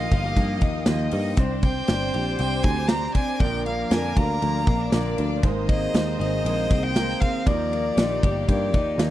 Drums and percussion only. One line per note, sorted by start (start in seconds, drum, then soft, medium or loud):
0.12 kick loud
0.12 ride medium
0.36 kick medium
0.36 ride medium
0.61 kick loud
0.61 ride medium
0.86 snare loud
0.86 ride medium
1.11 open hi-hat medium
1.11 ride medium
1.37 kick loud
1.37 hi-hat pedal medium
1.37 ride medium
1.63 kick loud
1.63 ride medium
1.88 snare loud
1.88 ride medium
2.14 ride medium
2.39 ride medium
2.63 kick loud
2.63 ride medium
2.88 snare loud
2.88 ride medium
3.15 kick medium
3.15 ride medium
3.40 kick loud
3.40 ride medium
3.66 ride medium
3.91 snare loud
3.91 ride medium
4.17 kick loud
4.17 ride medium
4.42 ride medium
4.67 kick loud
4.67 ride medium
4.92 snare loud
4.92 ride medium
5.18 ride medium
5.43 kick loud
5.43 ride medium
5.69 kick loud
5.69 ride medium
5.94 snare loud
5.94 ride medium
6.21 ride medium
6.46 ride medium
6.71 kick loud
6.71 ride medium
6.96 snare loud
6.96 ride medium
7.22 kick medium
7.22 ride medium
7.47 kick loud
7.47 ride medium
7.73 ride medium
7.97 snare loud
7.97 ride medium
8.23 kick loud
8.23 ride medium
8.49 kick medium
8.49 ride medium
8.74 kick loud
8.74 ride medium
8.99 snare loud
8.99 ride medium